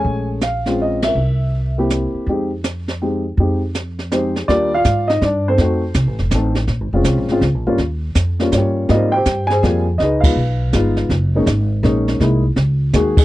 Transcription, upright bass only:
X:1
M:3/4
L:1/8
Q:"Swing" 1/4=163
K:Fm
V:1 name="Upright bass" clef=bass
B,,,6 | C,,4- C,, z | F,,6 | F,,6 |
E,,2 A,,2 G,,2 | F,,2 (3C,, =A,,, F,,, A,,,2 | (3B,,, A,,, F,,, (3C,, B,,, A,,, (3D,, B,,, A,,, | E,,2 F,,2 G,,2 |
A,,2 G,,2 F,,2 | D,,2 _C,,2 G,,,2 | _G,,,2 A,,,2 B,,,2 | C,,2 D,,2 ^D,,2 |]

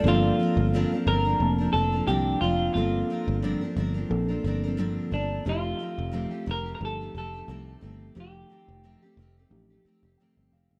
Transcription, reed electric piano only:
X:1
M:4/4
L:1/8
Q:"Swing 16ths" 1/4=89
K:Gm
V:1 name="Reed electric piano"
z8 | z8 | z8 | z6 g f |]
V:2 name="Reed electric piano"
[F,B,CA]3 z [F,B,Ca]3 z | [F,B,CA]3 z [F,B,CA]3 z | [F,A,EG]3 z [F,A,EG]3 z | [F,A,EG]3 z [F,A,EG]3 z |]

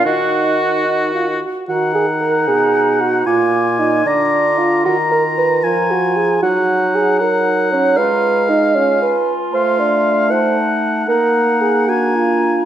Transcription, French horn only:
X:1
M:6/8
L:1/8
Q:3/8=76
K:Ebm
V:1 name="French horn" clef=bass
E3 E F G | E,3 C,3 | B,,3 =D,3 | E,3 F,3 |
G,6 | A,4- A, z | =A,6 | B,6 |]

